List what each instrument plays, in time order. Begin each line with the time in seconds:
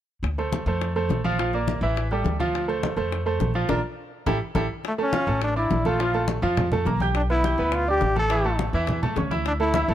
0.23 upright bass D2, high bongo, high conga
0.38 grand piano A3 A4 C5, high bongo, high conga
0.52 high bongo, high conga
0.66 upright bass F2, grand piano A3 A4 C5, high bongo, high conga
0.81 high bongo, high conga
0.96 grand piano A3 A4 C5, high conga
1.09 upright bass A#1, high bongo, low bongo, high conga
1.24 grand piano F3 F4 F5, high bongo, high conga
1.39 grand piano F3 F4 F5, high bongo, high conga
1.53 grand piano A#3 A#4 D5, high bongo, high conga
1.68 high bongo, high conga
1.81 upright bass A1, grand piano E3 E4 E5, high bongo
1.96 high bongo, high conga
2.11 grand piano G3 G4 A4, high conga
2.24 upright bass D2, high bongo, low bongo, high conga
2.40 grand piano F3 F4 F5, high bongo, high conga
2.55 high bongo, high conga
2.68 grand piano A3 A4 C5, high bongo, high conga
2.83 high bongo, high conga
2.97 upright bass F2, grand piano A3 A4 C5, high bongo, high conga
3.12 high bongo, high conga
3.26 grand piano A3 A4 C5, high conga
3.40 upright bass A#1, high bongo, low bongo, high conga
3.54 grand piano F3 F4 F5, high bongo
3.69 upright bass A#1, grand piano D4 F4 A#4, low bongo, high conga
4.26 upright bass A1, grand piano E4 G4 A4, low bongo, high conga
4.55 upright bass A1, grand piano E4 G4 A4, low bongo, high conga
4.84 high bongo, high conga
4.88 trombone A3
4.98 grand piano A3 A4 A5, trombone C#4, high bongo, high conga
5.13 grand piano F4 F5 F6, high bongo, high conga
5.27 upright bass A1, grand piano A3 A4 A5, high bongo, high conga
5.42 trombone D4, high bongo, high conga
5.56 grand piano D4 D5 D6, trombone E4, high conga
5.71 upright bass A#1, high bongo, low bongo, high conga
5.85 grand piano A3 A4 A5, trombone F4, high bongo, high conga
5.99 grand piano F3 F4 F5, high bongo, high conga
6.14 grand piano A3 A4 A5, high bongo, high conga
6.28 high bongo, high conga
6.42 upright bass F2, grand piano F3 F4 F5, high bongo
6.57 high bongo, high conga, low conga
6.72 grand piano A3 A4 A5, high conga, low conga
6.85 upright bass B1, grand piano A#3 A#4 A#5, high bongo, low bongo, high conga
7.00 grand piano G4 G5 G6, high bongo, high conga
7.15 trombone D4, high bongo, high conga
7.30 grand piano B3 B4 B5, trombone E4, high bongo, high conga
7.44 grand piano G4 G5 G6, high bongo, high conga
7.58 upright bass D2, grand piano B3 B4 B5, high bongo, high conga
7.72 trombone F4, high bongo, high conga
7.88 grand piano D4 D5 D6, trombone G4, high conga
8.01 upright bass A1, high bongo, low bongo, high conga
8.16 grand piano A3 A4 A5, trombone A4, high bongo, high conga
8.30 grand piano E3 E4 E5, high bongo, high conga
8.44 grand piano A3 A4 A5, high bongo, high conga
8.59 high bongo, high conga
8.73 upright bass E2, grand piano E3 E4 E5, high bongo
8.87 high bongo, high conga, low conga
9.03 grand piano A3 A4 A5, high conga, low conga
9.16 upright bass D2, grand piano C#4 C#5 C#6, high bongo, low bongo, high conga
9.31 grand piano E4 E5 E6, high bongo, high conga
9.46 trombone D4, high bongo, high conga
9.60 grand piano A3 A4 A5, trombone E4, high bongo, high conga
9.74 grand piano E4 E5 E6, high bongo, high conga
9.88 upright bass A1, grand piano A3 A4 A5, high bongo, high conga